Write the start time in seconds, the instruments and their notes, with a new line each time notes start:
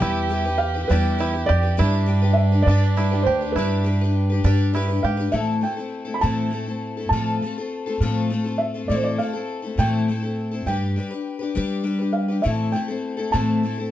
Already playing: fiddle G4, felt piano E5
0.00 upright bass E2, twelve-string acoustic guitar E3 G3 E4 G4 B4, five-string banjo E4
0.29 twelve-string acoustic guitar G3 E4 G4 B4
0.45 twelve-string acoustic guitar E4 G4 B4
0.58 felt piano F5
0.74 twelve-string acoustic guitar E4 G4 B4
0.88 upright bass E2, twelve-string acoustic guitar E3 G3 G4, five-string banjo D4, felt piano B4
0.92 twelve-string acoustic guitar E4 B4
1.18 twelve-string acoustic guitar G3 E4 G4 B4, five-string banjo E4
1.33 twelve-string acoustic guitar E4 G4 B4
1.46 upright bass F2, five-string banjo G4, felt piano D5
1.63 twelve-string acoustic guitar G4 B4
1.67 twelve-string acoustic guitar E4
1.77 upright bass G2, twelve-string acoustic guitar G3 D4 G4 B4, fiddle D4, five-string banjo E4
2.06 twelve-string acoustic guitar G3 D4 G4 B4
2.22 twelve-string acoustic guitar D4 G4 B4
2.33 felt piano E5
2.52 twelve-string acoustic guitar D4 G4 B4
2.62 felt piano D5
2.67 upright bass G2, twelve-string acoustic guitar G3 D4 G4 B4, five-string banjo D4
2.97 twelve-string acoustic guitar G3 D4 G4 B4, five-string banjo E4
3.11 twelve-string acoustic guitar D4 G4 B4
3.23 upright bass D2, five-string banjo G4, felt piano C5
3.41 twelve-string acoustic guitar D4 G4 B4
3.52 upright bass G2, five-string banjo E4, felt piano B4
3.57 twelve-string acoustic guitar G3 D4 G4 B4
3.84 twelve-string acoustic guitar G3 D4 G4 B4
4.01 twelve-string acoustic guitar D4 G4 B4
4.30 twelve-string acoustic guitar G4 B4
4.34 twelve-string acoustic guitar D4
4.44 upright bass G2, twelve-string acoustic guitar G3 D4 G4 B4, five-string banjo D4
4.73 twelve-string acoustic guitar G3 D4 G4 B4, five-string banjo E4
4.88 twelve-string acoustic guitar D4 G4 B4
5.03 upright bass G#2, five-string banjo G4, felt piano F5
5.17 twelve-string acoustic guitar D4 G4 B4
5.32 twelve-string acoustic guitar A2 E3 A3 C4 E4 A4, upright bass A2, felt piano E5
5.61 twelve-string acoustic guitar A3 C4 E4 A4, felt piano G5
5.77 twelve-string acoustic guitar A3 C4 E4 A4
6.05 twelve-string acoustic guitar A3 C4 E4 A4
6.14 felt piano B5
6.21 twelve-string acoustic guitar A2 E3 A3 C4 E4 A4, upright bass A2, felt piano A5
6.51 twelve-string acoustic guitar A3 C4 E4 A4
6.66 twelve-string acoustic guitar A3 C4 E4 A4
6.97 twelve-string acoustic guitar A3 C4 E4 A4
7.09 upright bass A2, twelve-string acoustic guitar A2 F3, felt piano A5
7.13 twelve-string acoustic guitar A3 C4 F4 A4
7.42 twelve-string acoustic guitar A3 C4 F4
7.46 twelve-string acoustic guitar A4
7.58 twelve-string acoustic guitar A3 C4 F4 A4
7.86 twelve-string acoustic guitar A3 C4 F4 A4
8.00 upright bass A2, twelve-string acoustic guitar A2 F3 A3 C4 F4 A4
8.30 twelve-string acoustic guitar A3 C4 F4 A4
8.44 twelve-string acoustic guitar A3 C4 F4 A4
8.58 felt piano E5
8.74 twelve-string acoustic guitar A3 C4 F4 A4
8.88 upright bass A2, twelve-string acoustic guitar A2 E3 A3 C4 E4 A4, felt piano D5
8.95 felt piano C5
9.03 felt piano D5
9.18 twelve-string acoustic guitar A3 C4, felt piano F5
9.22 twelve-string acoustic guitar E4 A4
9.33 twelve-string acoustic guitar A3 C4 E4 A4
9.62 twelve-string acoustic guitar A3 C4 E4 A4
9.78 twelve-string acoustic guitar A2 E3 A3 C4 E4 A4, upright bass A2, felt piano G5
10.08 twelve-string acoustic guitar A3 C4 E4 A4
10.23 twelve-string acoustic guitar A3 C4 E4 A4
10.51 twelve-string acoustic guitar A3 C4 E4 A4
10.66 upright bass G2, twelve-string acoustic guitar G3 D4 G4 B4, felt piano G5
10.96 twelve-string acoustic guitar G3 D4 G4 B4
11.11 twelve-string acoustic guitar D4 G4 B4
11.39 twelve-string acoustic guitar D4 G4 B4
11.55 twelve-string acoustic guitar G3 D4 G4 B4, upright bass G3
11.83 twelve-string acoustic guitar G3 D4 G4 B4
11.99 twelve-string acoustic guitar D4 G4 B4
12.13 felt piano F5
12.28 twelve-string acoustic guitar D4 G4 B4
12.42 twelve-string acoustic guitar A2 E3 A3 C4 E4 A4, upright bass A2, felt piano E5
12.72 twelve-string acoustic guitar A3 C4 E4 A4, felt piano G5
12.88 twelve-string acoustic guitar A3 C4 E4 A4
13.17 twelve-string acoustic guitar A3 C4 E4 A4
13.32 twelve-string acoustic guitar A2 E3 A3 C4 E4 A4, upright bass A2, felt piano A5
13.63 twelve-string acoustic guitar A3 C4 E4 A4
13.78 twelve-string acoustic guitar A3 C4 E4 A4